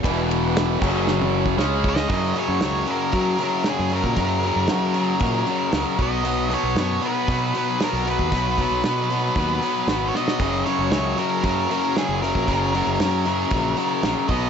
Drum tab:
CC |------x---------|----------------|----------------|----------------|
RD |x-x-x-----------|----------------|----------------|----------------|
HH |----------------|o-o-o-o-o-o-o-o-|o-o-o-o-o-o-o-o-|o-o-o-o-o-o-o-o-|
SD |----o---o---o--o|----o-------o---|----o-------o---|----o-------o---|
T1 |---------o------|----------------|----------------|----------------|
BD |o-----o----o--o-|o-------o------o|o-------o-----o-|--------o------o|

CC |----------------|----------------|----------------|
RD |----------------|----------------|----------------|
HH |o-o-o-o-o-o-o---|o-o-o-o-o-o-o-o-|o-o-o-o-o-o-o-o-|
SD |----o-------o-oo|----o-------o---|----o-------o---|
T1 |----------------|----------------|----------------|
BD |o-o-----o-------|o-------o------o|o-------o-----o-|